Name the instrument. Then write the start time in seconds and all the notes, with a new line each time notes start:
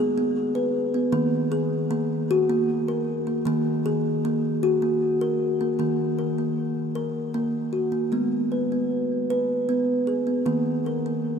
kalimba
Already playing: G#3 G#4
0.18 B3
0.55 B4
0.94 B3
1.12 D#3 A#3
1.52 G#4
1.91 A#3
2.31 F#4
2.50 A#3
2.88 A#4
3.27 A#3
3.45 D#3 A#3
3.86 G#4
4.25 A#3
4.63 F#4
4.82 A#3
5.21 A#4
5.61 A#3
5.79 D#3 A#3
6.19 A#4
6.38 A#3
6.95 A#4
7.34 A#3
7.73 F#4
7.92 A#3
8.12 G#3 B3
8.52 B4
8.72 B3
9.30 B4
9.69 B3
10.07 G#4
10.27 B3
10.46 D#3 A#3
10.86 A#4
11.06 A#3